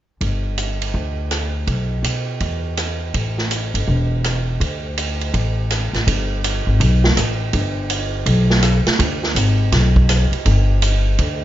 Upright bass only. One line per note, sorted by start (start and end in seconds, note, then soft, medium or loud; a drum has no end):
0.21 0.90 G1 medium
0.94 1.64 D2 medium
1.67 2.01 B1 medium
2.03 2.37 B2 medium
2.40 3.10 E2 medium
3.14 3.70 A1 medium
3.74 3.86 G1 medium
3.88 4.57 E1 medium
4.60 5.30 D2 medium
5.34 5.90 A1 medium
5.93 6.06 A1 medium
6.07 6.63 G1 medium
6.67 6.79 G#1 medium
6.80 7.14 B1 medium
7.17 7.51 A1 medium
7.53 8.23 G1 medium
8.26 8.82 B1 medium
8.86 muted upright bass stroke soft
8.99 9.33 D2 medium
9.35 9.70 G#1 medium
9.72 10.29 B1 medium
10.32 muted upright bass stroke soft
10.46 11.15 G1 medium
11.19 11.44 D2 medium